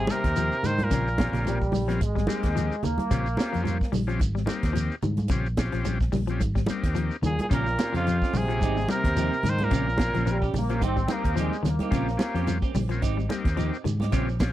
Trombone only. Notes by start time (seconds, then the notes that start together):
Already playing: C3
0.09 C3
0.66 D#3
0.82 A#2
7.24 A#2
7.40 A#2
7.53 A#2
7.97 F2
8.35 C3
8.92 C3
9.46 D#3
9.62 A#2